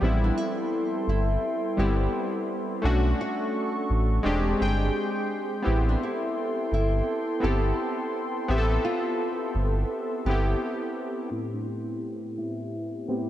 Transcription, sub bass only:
0.02 A1
1.07 G1
1.78 G1
2.84 B1
3.90 A1
4.25 E1
4.61 G1
5.66 A1
6.72 G1
7.43 G1
8.49 A1
9.55 G1
10.25 G1

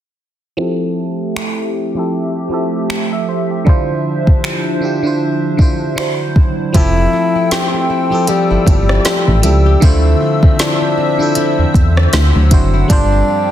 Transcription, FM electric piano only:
0.57 F3 C4 E4 G4
0.61 A4
1.95 F3 C4 E4 G4
1.99 A4
2.49 F3 C4 E4 G4
2.53 A4
3.13 E5
3.29 C5
3.51 G4
3.65 D3 D4 E4 F4
3.69 C5
4.80 D3 D4 E4 F4
4.85 G4
5.02 D3 D4 E4 F4
5.07 C5
5.57 D3 D4 E4 F4
5.62 C5
5.96 D3 D4 E4 F#4
6.00 C5
6.73 F3 C4 E4 G4
6.77 A4
8.10 F3 C4 E4 G4
8.15 A4
8.65 F3 C4 E4 G4
8.69 A4
9.42 F3 C4 E4 G4
9.46 A4
9.80 D3 D4 E4 F4
9.85 C5
11.18 D3 D4 E4 F4
11.22 A4
12.50 D3 D4 E4 F#4
12.54 C5
12.88 G3 D4 F4 A4
12.92 C5

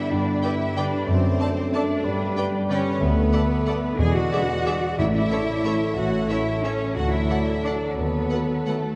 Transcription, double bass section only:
0.10 G2
1.08 F#2
2.04 G2
3.01 D2
3.99 E2
4.99 A1
5.96 A1
6.95 D2
7.97 D#2

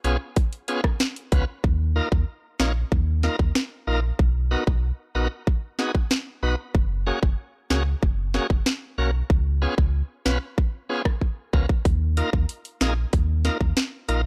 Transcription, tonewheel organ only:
0.04 B3 C#4 F4 G#4
0.68 B3 C#4 F4 G#4
1.32 B3 C#4 F4 B4
1.96 A#3 D#4 F4 A#4
2.60 A#3 D#4 F4 C#5
3.23 A#3 D#4 F4 A#4
3.87 A#3 D#4 F4 A#4
4.51 B3 D#4 F#4 A#4
5.15 B3 D#4 F#4 A#4
5.79 B3 D#4 F#4 G#4
6.43 B3 D#4 F#4 B4
7.07 A#3 C#4 F#4 G#4
7.70 A#3 C#4 F#4 G#4
8.34 A#3 C#4 F#4 G#4
8.98 A#3 C#4 F#4 A#4
9.62 B3 C#4 F4 G#4
10.25 B3 C#4 F4 B4
10.89 B3 C#4 F4 G#4
11.53 B3 C#4 F4 A#4
12.17 A#3 D#4 F4 A#4
12.81 A#3 D#4 F4 G#4
13.45 A#3 D#4 F4 A#4
14.08 A#3 D#4 F4 A#4

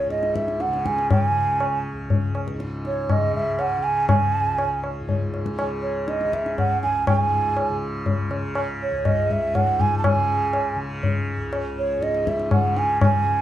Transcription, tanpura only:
Already playing: C#2 C#3
0.06 G#2
0.68 C#3
1.30 C#3
1.93 C#2
2.54 G#2
3.16 C#3
3.77 C#3
4.39 C#2
5.00 G#2
5.62 C#3
6.24 C#3
6.85 C#2
7.07 G#2
7.70 C#3
8.29 C#3
8.91 C#2
9.53 G#2
10.14 C#3
10.76 C#3
11.37 C#2
11.98 G#2
12.60 C#3
13.23 C#3

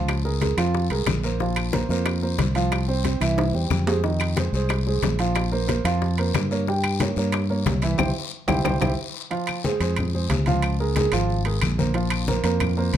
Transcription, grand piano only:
Already playing: F3 F4 F5
0.25 G#3 G#4 A#4
0.41 G#3 G#4 A#4
0.57 F3 F4 F5
0.90 G#3 G#4 A#4
1.24 A#3 A#4 C5
1.40 F3 F4 F5
1.73 A#3 A#4 C5
1.90 A#3 A#4 C5
2.23 A#3 A#4 C5
2.55 F3 F4 F5
2.88 C4 C5
3.04 C4 C5
3.21 E3 E4 E5
3.54 G3 G4 C5
3.87 G#3 G#4 C5
4.04 D#3 D#4 D#5
4.37 G#3 G#4 C5
4.54 G#3 G#4 C5
4.87 G#3 G#4 C5
5.19 F3 F4 F5
5.52 A#3 A#4 C5
5.67 A#3 A#4 C5
5.85 F3 F4 F5
6.19 A#3 A#4 C5
6.51 A#3 A#4 C#5
6.68 G3 G4 G5
7.01 A#3 A#4 C#5
7.18 A#3 A#4 C#5
7.50 A#3 A#4 C#5
7.82 E3 E4 E5
7.98 E4 G4 C5
8.48 E4 G4 C5
8.64 E4 G4 C5
8.81 E4 G4 C5
9.30 F3 F4 F5
9.65 G#3 G#4 C5
9.81 G#3 G#4 C5
10.14 G#3 G#4 C5
10.47 F3 F4 F5
10.80 G#3 G#4 A#4
10.96 G#3 G#4 A#4
11.12 F3 F4 F5
11.46 G#3 G#4 A#4
11.78 A#3 A#4 C5
11.94 F3 F4 F5
12.28 A#3 A#4 C5
12.44 A#3 A#4 C5
12.77 A#3 A#4 C5

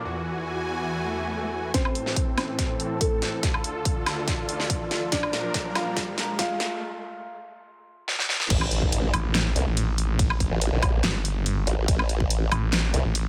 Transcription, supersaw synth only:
0.05 E2 E3 F#4 G#5
1.74 A2 E3 A4
3.43 D2 D3 F4
5.12 A#2 F3 D4 A#4

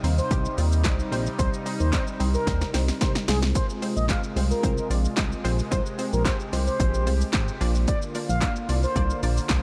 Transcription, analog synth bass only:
0.04 D#2
0.31 C2
0.58 D#2
0.85 C2
1.12 A#1
1.39 C2
1.80 D#2
2.20 C2
2.47 D#2
2.74 C2
3.01 C2
3.28 C2
3.97 A#1
4.36 C2
4.63 C2
4.90 A#1
5.18 C2
5.45 A#1
5.72 C2
6.13 A#1
6.53 C2
6.80 A#1
7.07 C2
7.34 G#1
7.61 A#1
8.29 A#1
8.69 C2
8.96 C2
9.23 A#1
9.50 C2

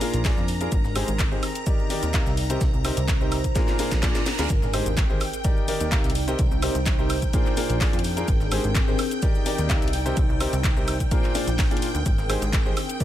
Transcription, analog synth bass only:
0.14 A#1
0.37 F2
0.72 G#1
0.85 G#1
1.08 G#1
2.03 D#2
2.26 C2
2.61 C2
2.73 C2
2.97 C2
3.92 A#1
4.39 D2
4.50 G#1
4.62 G#1
4.86 G#1
5.81 D#2
6.04 C2
6.39 C2
6.51 C2
6.75 C2
7.70 A#1
7.93 F2
8.28 G#1
8.40 G#1
8.64 G#1
9.59 D#2
9.82 C2
10.17 C2
10.29 C2
10.53 C2
11.47 A#1
11.95 D2
12.06 G#1
12.18 G#1
12.42 G#1

